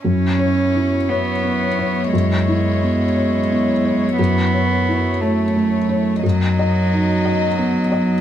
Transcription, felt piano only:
X:1
M:6/8
L:1/8
Q:3/8=58
K:C#m
V:1 name="Felt piano"
F,, c E c B, c | F,, E B, c B, c | F,, c E c A, c | F,, d D d B, d |]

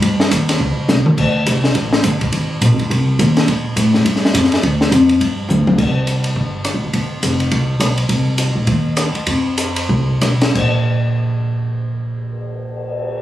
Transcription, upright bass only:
X:1
M:4/4
L:1/8
Q:"Swing" 1/4=208
K:Cdor
V:1 name="Upright bass" clef=bass
G,,2 E,,2 _D,, z C,, z | D,,2 C,,2 A,,,2 G,,,2 | _A,,,2 (3B,,, A,,, _G,,, C,,2 E,,2 | B,,2 A,,2 G,,2 F,,2 |
D,,2 F,,2 G,,2 D,,2 | C,,4 G,,,2- (3G,,, B,,, _G,,, | G,,,2 F,,,2 C,,2 _C,,2 | C,,3 B,,, E,,3 z |
F,,4 C,,2 _C,,2 | B,,,8- | B,,,8 |]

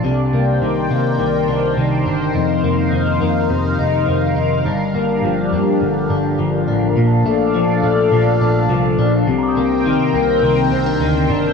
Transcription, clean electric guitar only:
X:1
M:4/4
L:1/16
Q:1/4=104
K:Bb
V:1 name="Clean electric guitar"
[C,D]2 B,2 E,2 B,2 E,2 D2 E,2 D2 | [F,,E]2 B,2 E,2 B,2 C,2 E2 E,2 E2 | [G,,D]2 B,2 F,2 B,2 D,2 D2 F,2 D2 | B,,2 A,2 F,2 A,2 F,2 D2 F,2 D2 |
C,2 B,2 E,2 B,2 E,2 C D E,2 D2 |]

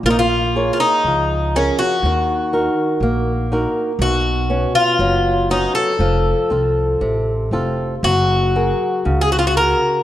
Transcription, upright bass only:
X:1
M:2/4
L:1/8
Q:1/4=60
K:Bbm
V:1 name="Upright bass" clef=bass
B,,,2 D,,2 | E,,2 B,,,2 | =B,,,2 ^F,,,2 | F,,, C,, =A,,, F,,, |
G,,,2 D,,2 |]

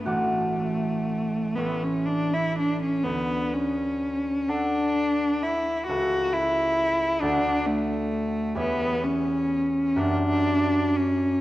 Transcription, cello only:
X:1
M:6/8
L:1/16
Q:3/8=42
K:D
V:1 name="Cello"
A,6 B, C D E D C | B,2 C4 D4 E2 | F2 E4 D2 A,4 | [K:F#phr] B,2 C4 D4 C2 |]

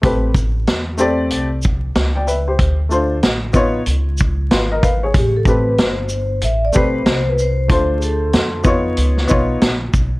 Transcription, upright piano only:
X:1
M:4/4
L:1/16
Q:"Swing 16ths" 1/4=94
K:Am
V:1 name="Upright piano"
[A,CGB]2 z4 [A,CGd]2 z4 z [dg] [Be] [Gc]- | [Gc] z [A,DFc]2 z2 [B,^DF^c]2 z4 [FB] [_B^d] [=Bf] [^Gc]- | [^G^c] z [A,=C=GB]2 z6 [A,CGB]2 z4 | [A,DFc]6 [B,^DF^c]4 [B,D^Ec]2 z4 |]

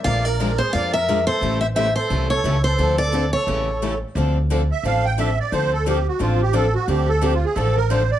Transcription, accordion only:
X:1
M:4/4
L:1/8
Q:"Swing" 1/4=176
K:Dm
V:1 name="Accordion"
d B2 _A d B2 =A- | A ^B B A2 A2 A- | A A2 A4 z | z3 e f g e d |
c A G ^F =F G A ^F | G A (3G F ^G A B c d |]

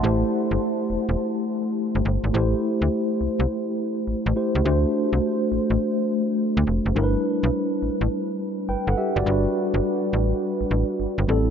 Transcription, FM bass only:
X:1
M:4/4
L:1/16
Q:"Swing 16ths" 1/4=104
K:G
V:1 name="FM bass" clef=bass
A,,,2 z G,,, z2 E,,, E,,, z4 z G,,, G,,, ^G,,, | A,,,2 z D,, z2 C,, C,, z4 A,,, A,,, z ^C,, | D,,2 z C,, z2 A,,, A,,, z4 z D,, =F,,, ^F,,, | G,,,2 z B,,, z2 A,,, A,,, z4 G,,, G,,, z F,,, |
G,,,2 z G,,, z2 A,,,2 z A,,, A,,, z G,,, G,,, A,,,2 |]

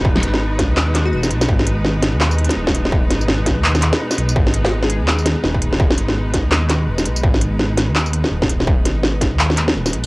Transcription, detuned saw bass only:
X:1
M:4/4
L:1/16
Q:"Swing 16ths" 1/4=167
K:G#m
V:1 name="Detuned saw bass" clef=bass
D,,,2 G,,,4- G,,, D,,4- D,, D,,,2 B,,,2 | G,,,6- G,,, D,,4 z D,,,4- | D,,,2 G,,,4- G,,, D,,4 z3 B,,,2 | G,,,6- G,,, D,,4 z D,,,4- |
D,,,2 G,,,4- G,,, D,,4- D,, D,,,2 B,,,2 | G,,,6- G,,, D,,4 z D,,,4- | D,,,2 G,,,4- G,,, D,,4- D,, D,,,2 B,,,2 |]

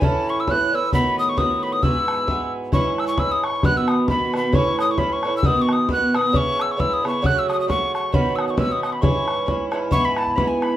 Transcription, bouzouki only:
X:1
M:2/4
L:1/8
Q:"Swing" 1/4=133
K:E
V:1 name="Bouzouki"
[A,,E,CE]2 [A,,E,CE] [A,,E,CE] | [A,,D,B,F]2 [A,,D,B,F]2 | [G,,E,B,F]2 [G,,E,B,F]2 | [K:C#m] [G,,E,CE]2 [G,,E,CE]2 |
[B,,D,B,F]2 [B,,D,B,F] [B,,D,B,F] | [A,,E,CE]2 [A,,E,CE] [A,,E,CE] | [B,,D,B,F]2 [B,,D,B,F] [B,,D,B,F] | [C,B,EG]2 [C,B,EG] [C,B,EG] |
[C,F,A,F]2 [C,F,A,F]2 | [B,,D,CF]2 [B,,D,CF]2 | [G,,E,CE]2 [G,,E,CE] [G,,E,CE] | [K:E] [G,,E,B,E]2 [G,,E,B,E]2 |]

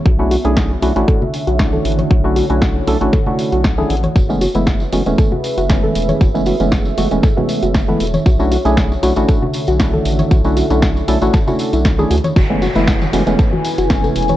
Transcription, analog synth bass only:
X:1
M:4/4
L:1/16
Q:"Swing 16ths" 1/4=117
K:F#m
V:1 name="Analog synth bass" clef=bass
B,,,2 z B,,,2 z B,,, A,,, z3 B,,,2 z A,,, z | B,,,2 z B,,,2 z B,,, A,,, z3 B,,,2 z A,,, z | F,,,2 z F,,,2 z F,,, E,,, z3 F,,,2 z E,,, z | F,,,2 z F,,,2 z F,,, E,,, z3 F,,,2 z E,,, z |
B,,,2 z B,,,2 z B,,, A,,, z3 B,,,2 z A,,, z | B,,,2 z B,,,2 z B,,, A,,, z3 B,,,2 z D,, z | F,,,2 z F,,,2 z F,,, E,,, z3 F,,,2 z E,,, z |]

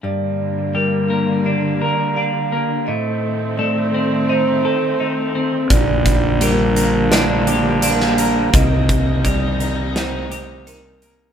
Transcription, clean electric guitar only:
X:1
M:4/4
L:1/8
Q:1/4=85
K:Gm
V:1 name="Clean electric guitar"
G,,2 G, B, D B D B, | A,,2 A, C E A E C | B,,2 G, B, D G D B, | C,2 G, B, E G E B, |]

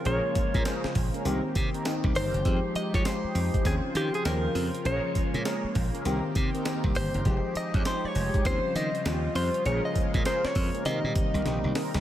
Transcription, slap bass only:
X:1
M:4/4
L:1/16
Q:"Swing 16ths" 1/4=100
K:Fm
V:1 name="Slap bass" clef=bass
B,,, z2 B,, z2 B,,, z C,, z C, z2 C,, G,,, _G,,, | F,, z2 F, z2 F,, z E,, z E, z E,,2 F,, z | B,,, z2 B,, z2 B,,, z C,, z C, z2 C,, G,,, _G,,, | F,,, z2 F,, z2 F,,, z E,, z E, z E,,2 F,, z |
B,,, z2 B,, z2 F,, z C, B,, z C,, B,,, C,, z C,, |]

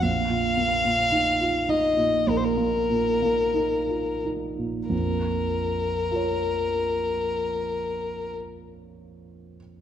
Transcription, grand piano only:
X:1
M:4/4
L:1/16
Q:1/4=49
K:Bbm
V:1 name="Grand piano"
z16 | z4 [FBd]12 |]
V:2 name="Grand piano" clef=bass
B,,, B,, B, B,, E F E B,, B,,, B, B,, B, E F E B,, | [B,,,F,,]16 |]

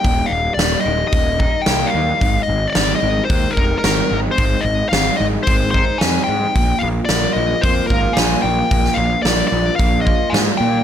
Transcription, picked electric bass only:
X:1
M:4/4
L:1/8
Q:1/4=111
K:Ablyd
V:1 name="Picked electric bass" clef=bass
E,,, E,,, E,,, E,,, E,,,2 C,, E,, | A,,, A,,, A,,, A,,, E,, F,,, A,,, A,,, | A,,, A,,, A,,, A,,, A,,,2 F,, A,, | B,,, B,,, B,,, B,,, F,, A,,, B,,, B,,, |
B,,, B,,, B,,, B,,, B,,,2 A,, B,, |]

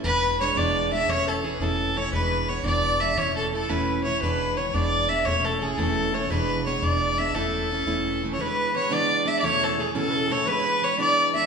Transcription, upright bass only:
X:1
M:6/8
L:1/8
Q:3/8=115
K:A
V:1 name="Upright bass" clef=bass
E,,,3 E,,,3 | E,,,3 E,,,3 | E,,,3 E,,,3 | E,,,3 E,,,3 |
E,,,3 E,,,3 | E,,,3 E,,,3 | E,,,3 E,,,3 | E,,,3 E,,,3 |
z6 | z6 | z6 |]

